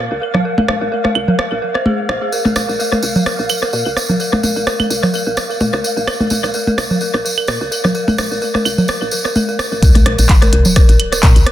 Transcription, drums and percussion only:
0.34 cross-stick soft
0.34 low conga medium
0.58 high tom medium
0.68 cross-stick medium
0.68 high tom soft
1.05 cross-stick soft
1.05 high tom medium
1.15 claves medium
1.28 low conga medium
1.39 cross-stick medium
1.75 cross-stick soft
1.86 high tom medium
2.09 cross-stick medium
2.32 tambourine medium
2.45 high tom medium
2.45 tambourine soft
2.56 cross-stick medium
2.56 high tom soft
2.56 tambourine medium
2.69 tambourine soft
2.80 tambourine medium
2.92 cross-stick soft
2.92 high tom soft
2.92 tambourine soft
3.02 tambourine medium
3.15 tambourine soft
3.15 low conga medium
3.26 cross-stick medium
3.26 tambourine soft
3.39 tambourine soft
3.49 tambourine medium
3.49 claves medium
3.62 cross-stick soft
3.62 tambourine soft
3.73 tambourine soft
3.86 tambourine soft
3.97 cross-stick medium
3.97 tambourine medium
4.09 tambourine soft
4.09 low conga medium
4.20 tambourine soft
4.33 cross-stick soft
4.33 high tom medium
4.33 tambourine soft
4.43 high tom soft
4.43 tambourine medium
4.57 tambourine soft
4.67 cross-stick medium
4.67 tambourine soft
4.80 high tom soft
4.80 tambourine soft
4.80 claves medium
4.90 tambourine medium
5.03 cross-stick soft
5.03 tambourine soft
5.03 low conga medium
5.14 tambourine soft
5.26 tambourine soft
5.37 cross-stick medium
5.37 tambourine medium
5.50 tambourine soft
5.60 high tom medium
5.60 tambourine soft
5.73 cross-stick soft
5.73 tambourine soft
5.84 tambourine medium
5.97 tambourine soft
6.08 cross-stick medium
6.08 tambourine soft
6.08 claves medium
6.20 high tom medium
6.20 tambourine soft
6.30 high tom soft
6.30 tambourine medium
6.44 cross-stick soft
6.44 tambourine soft
6.54 tambourine soft
6.67 high tom soft
6.67 tambourine soft
6.78 cross-stick medium
6.78 tambourine medium
6.90 tambourine soft
6.90 low conga medium
7.01 tambourine soft
7.14 cross-stick soft
7.14 tambourine soft
7.26 tambourine medium
7.37 tambourine soft
7.37 claves medium
7.47 cross-stick medium
7.47 tambourine soft
7.61 tambourine soft
7.72 tambourine medium
7.84 cross-stick soft
7.84 tambourine soft
7.84 low conga medium
7.95 tambourine soft
8.08 high tom medium
8.08 tambourine soft
8.18 cross-stick medium
8.18 high tom soft
8.18 tambourine medium
8.31 tambourine soft
8.42 tambourine soft
8.55 cross-stick soft
8.55 high tom medium
8.55 tambourine soft
8.65 tambourine medium
8.65 claves medium
8.78 tambourine soft
8.78 low conga medium
8.88 cross-stick medium
8.88 tambourine medium
9.02 tambourine soft
9.11 tambourine medium
9.25 cross-stick soft
9.25 tambourine soft
9.35 high tom medium
9.35 tambourine soft
9.49 tambourine soft
9.59 cross-stick medium
9.59 tambourine medium
9.72 tambourine soft
9.82 kick loud
9.82 closed hi-hat medium
9.82 tambourine medium
9.95 closed hi-hat soft
9.95 high tom medium
9.95 tambourine soft
10.06 cross-stick medium
10.06 closed hi-hat medium
10.06 high tom soft
10.18 closed hi-hat soft
10.18 tambourine medium
10.29 kick loud
10.29 clap medium
10.29 closed hi-hat medium
10.42 cross-stick soft
10.42 closed hi-hat soft
10.42 high tom medium
10.42 tambourine soft
10.53 closed hi-hat medium
10.65 tambourine medium
10.65 low conga medium
10.76 kick loud
10.76 cross-stick medium
10.76 closed hi-hat medium
10.89 closed hi-hat soft
10.89 tambourine soft
11.00 closed hi-hat medium
11.00 claves medium
11.13 cross-stick soft
11.13 closed hi-hat soft
11.13 tambourine medium
11.23 kick loud
11.23 clap medium
11.23 closed hi-hat medium
11.23 tambourine medium
11.36 closed hi-hat soft
11.36 tambourine soft
11.46 cross-stick medium
11.46 closed hi-hat medium

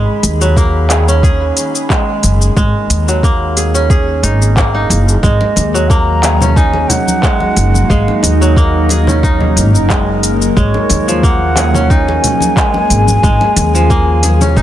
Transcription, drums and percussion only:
0.23 open hi-hat loud
0.23 shaker medium
0.41 shaker soft
0.57 kick loud
0.57 shaker soft
0.90 clap medium
0.90 open hi-hat medium
0.90 shaker medium
1.09 shaker soft
1.23 kick loud
1.23 shaker soft
1.57 open hi-hat medium
1.57 shaker medium
1.75 shaker soft
1.90 kick loud
1.90 clap medium
1.90 shaker soft
2.23 open hi-hat medium
2.23 shaker medium
2.42 shaker soft
2.57 kick loud
2.57 shaker soft
2.90 open hi-hat loud
2.90 shaker medium
3.09 shaker soft
3.23 kick loud
3.23 shaker soft
3.57 open hi-hat medium
3.57 shaker medium
3.75 shaker soft
3.90 kick loud
3.90 shaker soft
4.24 open hi-hat medium
4.24 shaker medium
4.42 shaker soft
4.57 kick loud
4.57 clap medium
4.57 shaker soft
4.90 open hi-hat medium
4.90 shaker medium
5.09 shaker soft
5.23 kick loud
5.23 shaker soft
5.41 muted conga medium
5.56 open hi-hat medium
5.56 muted conga medium
5.56 shaker medium
5.75 shaker soft
5.90 kick loud
5.90 shaker soft
6.23 clap medium
6.23 open hi-hat medium
6.23 muted conga medium
6.23 shaker medium
6.41 high conga medium
6.41 low conga medium
6.41 shaker soft
6.56 kick loud
6.56 shaker soft
6.74 muted conga medium
6.90 open hi-hat medium
6.90 low conga medium
6.90 shaker medium
7.07 high conga medium
7.07 shaker soft
7.23 kick loud
7.23 clap medium
7.23 shaker soft
7.40 muted conga soft
7.40 high conga medium
7.57 open hi-hat medium
7.57 shaker medium
7.74 high conga medium
7.74 shaker soft
7.90 kick loud
7.90 shaker soft
8.08 muted conga medium
8.23 open hi-hat medium
8.23 muted conga medium
8.23 shaker medium
8.42 shaker soft
8.57 kick loud
8.57 shaker soft
8.89 open hi-hat medium
8.89 muted conga medium
8.89 shaker medium
9.07 high conga medium
9.07 low conga medium
9.07 shaker soft
9.23 kick loud
9.23 shaker soft
9.40 high conga medium
9.40 low conga medium
9.57 open hi-hat medium
9.57 shaker medium
9.75 shaker soft
9.90 kick loud
9.90 clap medium
9.90 shaker soft
10.23 open hi-hat medium
10.23 shaker medium
10.42 shaker soft
10.57 kick medium
10.57 shaker soft
10.74 muted conga medium
10.90 open hi-hat loud
10.90 muted conga medium
10.90 shaker medium
11.09 shaker soft
11.23 kick loud
11.23 shaker soft
11.56 clap medium
11.56 open hi-hat loud
11.56 muted conga medium
11.56 shaker medium
11.74 high conga medium
11.74 low conga medium
11.74 shaker soft
11.90 kick loud
11.90 shaker soft
12.08 muted conga medium
12.24 open hi-hat loud
12.24 low conga medium
12.24 shaker medium
12.41 high conga medium
12.41 shaker soft
12.57 kick loud
12.57 clap medium
12.57 shaker soft
12.74 muted conga medium
12.74 high conga medium
12.90 open hi-hat medium
12.90 shaker medium
13.07 high conga medium
13.07 shaker soft
13.23 kick loud
13.23 shaker soft
13.41 muted conga medium
13.56 open hi-hat medium
13.56 muted conga medium
13.56 shaker medium
13.75 shaker soft
13.90 kick loud
13.90 shaker soft
14.23 open hi-hat loud
14.23 muted conga medium
14.23 high conga soft
14.23 shaker medium
14.41 high conga medium
14.41 low conga medium
14.41 shaker soft
14.57 kick loud
14.57 shaker soft

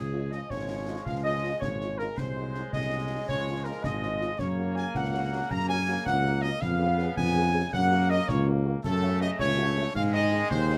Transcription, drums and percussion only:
0.32 snare medium
0.50 concert bass drum medium
0.50 snare medium
1.06 concert bass drum medium
1.06 snare medium
1.62 concert bass drum medium
1.62 snare medium
1.81 snare medium
1.99 snare medium
2.18 concert bass drum medium
2.18 snare medium
2.18 crash soft
2.54 snare medium
2.73 concert bass drum medium
2.73 snare medium
3.29 concert bass drum medium
3.29 snare medium
3.84 concert bass drum loud
3.84 snare loud
4.03 snare soft
4.21 snare medium
4.39 concert bass drum medium
4.39 snare medium
4.39 crash soft
4.76 snare medium
4.95 concert bass drum loud
4.95 snare medium
5.51 concert bass drum medium
5.51 snare medium
6.06 concert bass drum medium
6.06 snare medium
6.25 snare medium
6.43 snare medium
6.62 concert bass drum medium
6.62 snare medium
6.62 crash soft
6.99 snare medium
7.17 concert bass drum loud
7.17 snare medium
7.73 concert bass drum medium
7.73 snare medium
8.29 concert bass drum loud
8.29 snare medium
8.84 concert bass drum medium
8.84 snare medium
8.84 crash medium
9.21 snare medium
9.39 concert bass drum loud
9.39 snare medium
9.95 concert bass drum loud
9.95 snare medium
10.51 concert bass drum medium
10.51 snare medium
10.70 snare medium

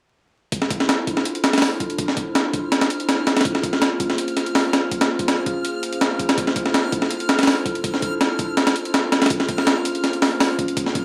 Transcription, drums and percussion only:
0.52 kick loud
0.52 closed hi-hat medium
0.62 snare soft
0.71 kick medium
0.71 closed hi-hat medium
0.80 snare medium
0.89 snare loud
0.89 closed hi-hat medium
1.07 kick medium
1.07 closed hi-hat medium
1.17 snare soft
1.25 closed hi-hat medium
1.35 closed hi-hat soft
1.44 snare medium
1.44 closed hi-hat medium
1.53 snare medium
1.53 closed hi-hat medium
1.58 snare medium
1.58 closed hi-hat medium
1.62 snare loud
1.62 open hi-hat medium
1.80 kick medium
1.80 closed hi-hat medium
1.90 closed hi-hat soft
1.98 kick loud
1.98 closed hi-hat medium
2.08 snare soft
2.17 kick medium
2.17 closed hi-hat medium
2.35 snare loud
2.35 closed hi-hat medium
2.54 kick medium
2.54 closed hi-hat medium
2.72 snare medium
2.72 closed hi-hat medium
2.81 snare loud
2.81 closed hi-hat medium
2.90 closed hi-hat medium
3.00 closed hi-hat soft
3.09 snare loud
3.09 closed hi-hat medium
3.27 snare medium
3.27 closed hi-hat medium
3.36 snare medium
3.36 closed hi-hat medium
3.41 snare medium
3.41 closed hi-hat medium
3.45 kick loud
3.45 closed hi-hat medium
3.55 snare medium
3.63 kick medium
3.63 closed hi-hat medium
3.73 snare medium
3.82 snare loud
3.82 closed hi-hat medium
4.00 kick medium
4.00 closed hi-hat medium
4.10 snare medium
4.18 closed hi-hat medium
4.28 closed hi-hat soft
4.37 snare soft
4.37 closed hi-hat medium
4.46 closed hi-hat soft
4.55 snare loud
4.55 open hi-hat medium
4.73 snare medium
4.73 closed hi-hat medium
4.91 kick medium
4.91 closed hi-hat medium
5.01 snare medium
5.01 closed hi-hat medium
5.19 kick medium
5.19 closed hi-hat medium
5.28 snare loud
5.28 closed hi-hat medium
5.46 kick medium
5.46 closed hi-hat medium
5.65 closed hi-hat medium
5.83 closed hi-hat medium
5.93 closed hi-hat soft
6.01 snare medium
6.01 closed hi-hat medium
6.19 kick medium
6.19 closed hi-hat medium
6.29 snare medium
6.29 closed hi-hat medium
6.38 kick medium
6.38 closed hi-hat medium
6.47 snare medium
6.56 kick medium
6.56 closed hi-hat medium
6.65 snare medium
6.74 snare loud
6.74 closed hi-hat medium
6.92 kick medium
6.92 closed hi-hat medium
7.02 snare medium
7.10 closed hi-hat medium
7.20 closed hi-hat soft
7.29 snare medium
7.29 closed hi-hat medium
7.39 snare medium
7.39 closed hi-hat medium
7.43 snare medium
7.43 closed hi-hat medium
7.47 snare loud
7.47 open hi-hat medium
7.66 kick medium
7.66 closed hi-hat medium
7.75 closed hi-hat soft
7.84 kick medium
7.84 closed hi-hat medium
7.94 snare soft
8.02 kick medium
8.02 closed hi-hat medium
8.21 snare loud
8.21 closed hi-hat medium
8.39 kick medium
8.39 closed hi-hat medium
8.57 snare medium
8.57 closed hi-hat medium
8.67 snare loud
8.67 closed hi-hat medium
8.76 closed hi-hat medium
8.85 closed hi-hat soft
8.94 snare loud
8.94 closed hi-hat medium
9.12 snare medium
9.12 closed hi-hat medium
9.22 snare medium
9.22 closed hi-hat medium
9.26 snare medium
9.26 closed hi-hat medium
9.30 kick loud
9.30 closed hi-hat medium
9.40 snare medium
9.49 kick medium
9.49 closed hi-hat medium
9.58 snare medium
9.67 snare loud
9.67 closed hi-hat medium
9.85 closed hi-hat medium
9.95 closed hi-hat soft
10.04 snare soft
10.04 closed hi-hat medium
10.13 closed hi-hat soft
10.22 snare medium
10.22 open hi-hat medium
10.40 snare loud
10.40 open hi-hat medium
10.59 kick medium
10.59 closed hi-hat medium
10.68 closed hi-hat soft
10.77 kick loud
10.77 closed hi-hat medium
10.86 snare soft
10.95 kick medium
10.95 closed hi-hat medium

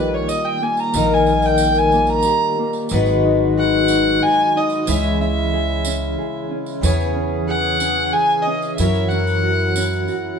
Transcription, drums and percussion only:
0.29 tambourine medium
0.77 tambourine soft
0.94 tambourine medium
1.26 tambourine soft
1.42 tambourine soft
1.58 tambourine medium
1.75 tambourine soft
1.92 tambourine soft
2.07 tambourine soft
2.23 tambourine medium
2.73 tambourine soft
2.89 tambourine medium
3.06 tambourine soft
3.88 tambourine medium
4.70 tambourine soft
4.87 tambourine loud
5.03 tambourine soft
5.85 tambourine loud
6.66 tambourine soft
6.83 tambourine medium
7.00 tambourine soft
7.80 tambourine loud
8.62 tambourine soft
8.78 tambourine loud
8.95 tambourine soft
9.11 tambourine soft
9.27 tambourine soft
9.76 tambourine medium
9.93 tambourine soft
10.08 tambourine soft

